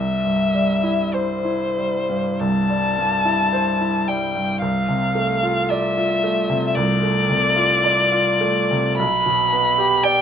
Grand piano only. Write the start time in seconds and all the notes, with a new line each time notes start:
Already playing: C2
0.24 G2
0.54 G3
0.83 E4
1.14 C5
1.45 E4
1.78 G3
2.09 G2
2.41 C2
2.70 G3
2.98 G2
3.25 E4
3.53 C5
3.81 E4
4.08 G3
4.35 G2
4.62 C2
4.88 C3
5.15 A3
5.43 F4
5.70 D5
5.97 F4
6.24 A3
6.49 C3
6.77 C2
7.03 A3
7.30 C3
7.56 F4
7.84 D5
8.12 F4
8.41 A3
8.71 C3
8.99 B1
9.26 B2
9.52 B3
9.78 G4
10.04 D5